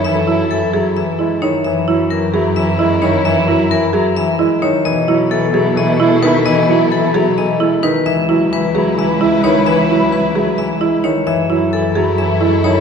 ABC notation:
X:1
M:7/8
L:1/8
Q:1/4=131
K:F#dor
V:1 name="Vibraphone"
e z A z e z c | e z ^A z e z c | e z ^A z e z c | d z A z d z B |
d z A z d z B | e z B z e z c | e z B z e z c | e z A z e z c |]
V:2 name="Violin section"
[EA]6 z | [E^A]6- [EA]- | [E^A]6 z | [EA]6- [EA]- |
[EA]6 z | [EB]6- [EB]- | [EB]6 z | [EA]6- [EA] |]
V:3 name="Marimba"
z E z G z E D | z E z G z E D | z E z G z E D | z E z G z E D |
z E z G z E D | z E z G z E D | z E z G z E D | z E z G z E D |]
V:4 name="Soprano saxophone"
E E E E E E z | E E E E E E E | E E E E E E z | E E E E E E E |
E E E E E E z | E E E E E E E | E E E E E E z | E E E E E E E |]
V:5 name="Grand piano" clef=bass
E, F, E, F, E, G, D, | E, F, E, F, E, G, D, | E, F, E, F, E, G, D, | E, F, E, F, E, G, D, |
E, F, E, F, E, G, D, | E, F, E, F, E, G, D, | E, F, E, F, E, G, D, | E, F, E, F, E, G, D, |]
V:6 name="Cello" clef=bass
F,,6- F,, | F,,6- F,,- | F,,6- F,, | B,,6- B,,- |
B,,6- B,, | C,,6- C,,- | C,,6- C,, | F,,6- F,, |]